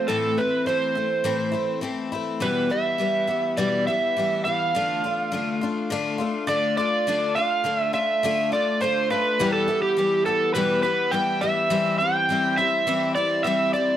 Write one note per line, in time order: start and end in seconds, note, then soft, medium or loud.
0.00 0.12 C5 medium
0.08 0.37 A2 medium
0.08 0.38 E3 medium
0.08 0.38 A3 medium
0.08 0.38 C4 medium
0.08 0.36 E4 medium
0.08 0.38 A4 medium
0.38 0.66 A3 soft
0.38 0.67 C4 soft
0.38 0.67 E4 medium
0.38 0.67 B4 medium
0.66 0.96 E3 medium
0.66 0.96 A3 medium
0.66 0.96 C4 medium
0.66 0.94 E4 medium
0.66 1.80 C5 medium
0.95 1.24 A3 soft
0.95 1.24 C4 soft
0.95 1.25 E4 soft
1.24 1.54 A2 medium
1.24 1.54 E3 medium
1.24 1.53 A3 medium
1.24 1.52 C4 medium
1.24 1.50 E4 medium
1.52 1.81 A3 soft
1.52 1.82 C4 soft
1.52 1.82 E4 medium
1.81 2.11 E3 medium
1.81 2.12 A3 medium
1.81 2.12 C4 medium
1.81 2.11 E4 medium
2.12 2.41 A3 soft
2.12 2.41 C4 medium
2.12 2.41 E4 medium
2.40 2.70 E2 medium
2.40 2.70 B2 medium
2.40 2.71 E3 medium
2.40 2.70 G3 medium
2.40 2.69 B3 medium
2.40 2.68 E4 medium
2.40 2.72 B4 medium
2.70 2.97 E3 soft
2.70 2.98 G3 soft
2.70 2.99 B3 soft
2.70 2.99 E4 soft
2.70 3.61 E5 medium
2.98 3.28 E3 medium
2.98 3.28 G3 medium
2.98 3.27 B3 medium
2.98 3.26 E4 medium
3.27 3.57 E3 soft
3.27 3.57 G3 soft
3.27 3.58 B3 medium
3.27 3.57 E4 medium
3.57 3.87 E2 medium
3.57 3.87 B2 medium
3.57 3.87 E3 medium
3.57 3.87 G3 medium
3.57 3.87 B3 medium
3.57 3.86 E4 medium
3.57 3.85 D5 medium
3.87 4.15 E3 soft
3.87 4.16 G3 soft
3.87 4.17 B3 soft
3.87 4.16 E4 soft
3.87 4.41 E5 medium
4.16 4.46 E3 medium
4.16 4.46 G3 medium
4.16 4.45 B3 medium
4.16 4.44 E4 medium
4.44 4.74 E3 soft
4.44 4.75 G3 medium
4.44 4.75 B3 soft
4.44 4.74 E4 medium
4.44 6.44 F5 medium
4.75 5.04 D3 medium
4.75 5.04 A3 medium
4.75 5.04 D4 medium
4.75 5.03 F4 medium
5.04 5.31 A3 soft
5.04 5.32 D4 soft
5.04 5.33 F4 medium
5.32 5.61 D3 medium
5.32 5.61 A3 medium
5.32 5.62 D4 medium
5.32 5.60 F4 medium
5.61 5.89 A3 medium
5.61 5.91 D4 medium
5.61 5.91 F4 medium
5.90 6.20 D3 medium
5.90 6.20 A3 medium
5.90 6.18 D4 loud
5.90 6.17 F4 loud
6.18 6.47 A3 medium
6.18 6.47 D4 medium
6.18 6.48 F4 medium
6.47 6.77 D3 medium
6.47 6.78 A3 medium
6.47 6.78 D4 medium
6.47 6.76 F4 medium
6.47 6.76 D5 medium
6.77 7.06 A3 soft
6.77 7.07 D4 medium
6.77 7.07 F4 medium
6.77 7.38 D5 loud
7.07 7.36 D3 medium
7.07 7.36 A3 medium
7.07 7.36 D4 medium
7.07 7.35 F4 medium
7.35 7.63 A3 soft
7.35 7.64 D4 soft
7.35 7.65 F4 soft
7.35 7.78 F5 medium
7.64 7.93 D3 medium
7.64 7.94 A3 medium
7.64 7.93 D4 medium
7.64 7.92 F4 medium
7.78 7.94 E5 medium
7.93 8.23 A3 soft
7.93 8.23 D4 soft
7.93 8.23 F4 medium
7.93 8.53 E5 loud
8.23 8.52 D3 medium
8.23 8.53 A3 medium
8.23 8.52 D4 medium
8.23 8.51 F4 medium
8.52 8.80 A3 soft
8.52 8.81 D4 soft
8.52 8.81 F4 medium
8.52 8.82 D5 medium
8.80 9.10 D3 medium
8.80 9.10 A3 medium
8.80 9.11 D4 medium
8.80 9.09 F4 medium
8.80 9.11 C5 medium
9.10 9.40 A3 soft
9.10 9.40 D4 soft
9.10 9.39 F4 medium
9.10 9.53 B4 loud
9.39 9.68 E2 medium
9.39 9.68 B2 medium
9.39 9.69 E3 medium
9.39 9.69 G3 medium
9.39 9.68 B3 medium
9.39 9.67 E4 medium
9.53 9.82 A4 medium
9.68 9.95 E3 soft
9.68 9.97 G3 soft
9.68 9.98 B3 medium
9.68 9.97 E4 medium
9.82 10.25 G4 loud
9.97 10.26 E3 medium
9.97 10.26 G3 medium
9.97 10.26 B3 medium
9.97 10.25 E4 medium
10.26 10.54 E3 soft
10.26 10.54 G3 soft
10.26 10.55 B3 soft
10.26 10.55 E4 medium
10.26 10.54 A4 medium
10.54 10.84 E2 medium
10.54 10.84 B2 medium
10.54 10.84 E3 medium
10.54 10.83 G3 medium
10.54 10.83 B3 medium
10.54 10.82 E4 medium
10.54 10.82 B4 loud
10.83 11.10 E3 soft
10.83 11.11 G3 medium
10.83 11.13 B3 medium
10.83 11.12 E4 medium
10.83 11.13 B4 medium
11.11 11.41 E3 medium
11.11 11.42 G3 medium
11.11 11.41 B3 medium
11.11 11.40 E4 medium
11.11 11.42 G5 loud
11.41 11.69 E3 soft
11.41 11.69 G3 medium
11.41 11.71 B3 medium
11.41 11.70 E4 medium
11.41 11.95 E5 loud
11.70 11.99 E3 medium
11.70 12.00 G3 medium
11.70 12.00 C4 medium
11.70 11.99 E4 medium
11.98 12.29 C4 soft
11.98 12.29 E4 soft
11.98 12.59 G5 loud
12.02 12.29 G3 soft
12.29 12.58 E3 medium
12.29 12.58 G3 medium
12.29 12.58 C4 medium
12.29 12.56 E4 medium
12.57 12.86 G3 soft
12.57 12.87 C4 medium
12.57 12.87 E4 medium
12.57 13.12 E5 loud
12.87 13.16 E3 medium
12.87 13.16 G3 medium
12.87 13.16 C4 medium
12.87 13.14 E4 medium
13.15 13.44 G3 soft
13.15 13.45 C4 medium
13.15 13.45 E4 medium
13.15 13.45 D5 medium
13.43 13.73 E3 medium
13.43 13.74 G3 medium
13.43 13.74 C4 medium
13.43 13.73 E5 loud
13.47 13.72 E4 medium
13.73 13.97 G3 soft
13.73 13.97 C4 soft
13.73 13.97 E4 medium
13.73 13.97 D5 medium